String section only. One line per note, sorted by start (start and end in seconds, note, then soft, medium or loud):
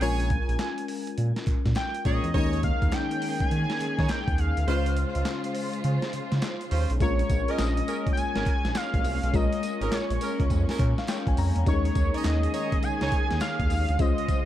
2.34 4.65 D#3 medium
2.34 4.65 A#3 medium
2.34 4.65 C#4 medium
2.34 4.65 G#4 medium
4.67 6.98 C#3 medium
4.67 6.98 G#3 medium
4.67 6.98 F4 loud
4.67 6.98 C5 medium
7.00 11.62 G#3 medium
7.00 13.95 A#3 medium
7.00 13.95 C#4 medium
11.66 13.97 D#3 medium
11.66 13.97 G#4 medium
13.99 14.45 C#3 medium
13.99 14.45 G#3 medium
13.99 14.45 F4 loud
13.99 14.45 C5 medium